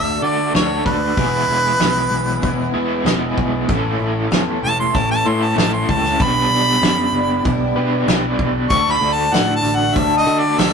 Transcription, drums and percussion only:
0.54 snare, closed hi-hat
0.86 kick
1.17 kick, closed hi-hat
1.80 snare, closed hi-hat
2.43 kick, closed hi-hat
3.06 snare, closed hi-hat
3.38 kick
3.69 kick, closed hi-hat
4.31 snare, closed hi-hat
4.95 kick, closed hi-hat
5.58 snare, closed hi-hat
5.89 kick
6.05 snare
6.20 kick, closed hi-hat
6.83 snare, closed hi-hat
7.45 kick, closed hi-hat
8.08 snare, closed hi-hat
8.39 kick
8.70 kick, closed hi-hat, tambourine
8.87 snare
9.34 snare, closed hi-hat, tambourine
9.65 tambourine
9.96 kick, closed hi-hat
10.28 tambourine
10.59 snare, closed hi-hat, tambourine

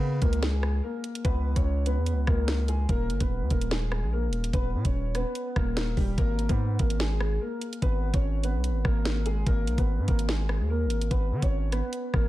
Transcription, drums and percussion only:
0.22 kick, closed hi-hat
0.33 closed hi-hat
0.43 snare
0.63 cross-stick
1.04 closed hi-hat
1.15 closed hi-hat
1.25 kick, closed hi-hat
1.56 kick, closed hi-hat
1.86 closed hi-hat
2.06 closed hi-hat
2.27 kick, cross-stick
2.48 snare, closed hi-hat
2.68 closed hi-hat
2.89 kick, closed hi-hat
3.10 closed hi-hat
3.20 kick, closed hi-hat
3.50 kick, closed hi-hat
3.61 closed hi-hat
3.71 snare
3.92 cross-stick
4.33 closed hi-hat
4.44 closed hi-hat
4.53 kick, closed hi-hat
4.85 kick, closed hi-hat
5.15 cross-stick, closed hi-hat
5.35 closed hi-hat
5.56 kick, cross-stick
5.77 snare, closed hi-hat
5.97 kick, open hi-hat
6.18 kick, closed hi-hat
6.39 closed hi-hat
6.49 kick, closed hi-hat
6.79 kick, closed hi-hat
6.90 closed hi-hat
7.00 snare
7.20 cross-stick
7.61 closed hi-hat
7.73 closed hi-hat
7.82 kick, closed hi-hat
8.14 kick, closed hi-hat
8.44 closed hi-hat
8.64 closed hi-hat
8.85 kick, cross-stick
9.05 snare, closed hi-hat
9.26 closed hi-hat
9.46 kick, closed hi-hat
9.67 closed hi-hat
9.78 kick, closed hi-hat
10.08 kick, closed hi-hat
10.19 closed hi-hat
10.29 snare
10.49 cross-stick
10.90 closed hi-hat
11.01 closed hi-hat
11.11 kick, closed hi-hat
11.42 kick, closed hi-hat
11.72 cross-stick, closed hi-hat
11.93 closed hi-hat
12.14 kick, cross-stick

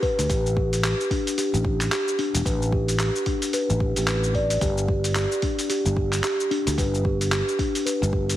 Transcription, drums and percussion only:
0.03 kick, open hi-hat
0.19 open hi-hat, cabasa
0.30 kick, open hi-hat, cabasa
0.46 cabasa
0.57 kick
0.73 open hi-hat, cabasa
0.84 clap, open hi-hat, cabasa
1.01 cabasa
1.11 kick, open hi-hat
1.27 open hi-hat, cabasa
1.38 open hi-hat, cabasa
1.54 cabasa
1.65 kick
1.81 clap, open hi-hat, cabasa
1.92 clap, open hi-hat, cabasa
2.08 cabasa
2.19 open hi-hat
2.35 open hi-hat, cabasa
2.45 kick, open hi-hat, cabasa
2.62 cabasa
2.72 kick
2.88 open hi-hat, cabasa
2.99 clap, open hi-hat, cabasa
3.16 cabasa
3.26 kick, open hi-hat
3.42 open hi-hat, cabasa
3.53 open hi-hat, cabasa
3.70 cabasa
3.80 kick
3.96 open hi-hat, cabasa
4.07 clap, open hi-hat, cabasa
4.24 cabasa
4.34 kick, open hi-hat
4.50 open hi-hat, cabasa
4.61 kick, open hi-hat, cabasa
4.78 cabasa
4.88 kick
5.04 open hi-hat, cabasa
5.15 clap, open hi-hat, cabasa
5.32 cabasa
5.42 kick, open hi-hat
5.59 open hi-hat, cabasa
5.70 open hi-hat, cabasa
5.86 cabasa
5.97 kick
6.13 clap, open hi-hat, cabasa
6.24 clap, open hi-hat, cabasa
6.40 cabasa
6.51 open hi-hat
6.67 open hi-hat, cabasa
6.78 kick, open hi-hat, cabasa
6.94 cabasa
7.05 kick
7.21 open hi-hat, cabasa
7.32 clap, open hi-hat, cabasa
7.48 cabasa
7.59 kick, open hi-hat
7.75 open hi-hat, cabasa
7.87 open hi-hat, cabasa
8.03 cabasa
8.13 kick
8.29 open hi-hat, cabasa

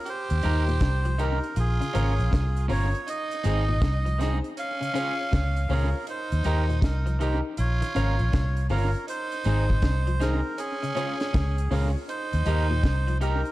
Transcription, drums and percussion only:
0.06 closed hi-hat
0.30 closed hi-hat
0.43 closed hi-hat
0.68 closed hi-hat
0.80 kick, snare, closed hi-hat
1.05 closed hi-hat
1.19 closed hi-hat
1.44 closed hi-hat
1.56 closed hi-hat
1.82 closed hi-hat
1.95 closed hi-hat
2.20 closed hi-hat
2.33 kick, snare, closed hi-hat
2.57 closed hi-hat
2.69 open hi-hat
2.95 closed hi-hat
3.08 closed hi-hat
3.31 closed hi-hat
3.44 closed hi-hat
3.82 kick, snare, closed hi-hat
4.06 closed hi-hat
4.21 snare, closed hi-hat
4.44 closed hi-hat
4.57 closed hi-hat
4.82 closed hi-hat
4.95 closed hi-hat
5.33 kick, snare, closed hi-hat
5.56 closed hi-hat
5.69 open hi-hat
6.07 closed hi-hat
6.32 closed hi-hat
6.44 closed hi-hat
6.70 closed hi-hat
6.82 kick, snare, closed hi-hat
7.07 closed hi-hat
7.21 closed hi-hat
7.57 closed hi-hat
7.82 closed hi-hat
7.96 closed hi-hat
8.19 closed hi-hat
8.33 kick, snare, closed hi-hat
8.57 closed hi-hat
8.69 open hi-hat
8.95 closed hi-hat
9.08 closed hi-hat
9.32 closed hi-hat
9.44 closed hi-hat
9.70 kick
9.82 kick, snare, closed hi-hat
10.07 closed hi-hat
10.21 snare, closed hi-hat
10.58 closed hi-hat
10.83 closed hi-hat
10.97 closed hi-hat
11.20 snare, closed hi-hat
11.34 kick, snare, closed hi-hat
11.58 closed hi-hat
11.71 open hi-hat
12.09 closed hi-hat
12.33 closed hi-hat
12.46 closed hi-hat
12.84 kick, snare, closed hi-hat
13.08 closed hi-hat
13.21 closed hi-hat
13.45 closed hi-hat

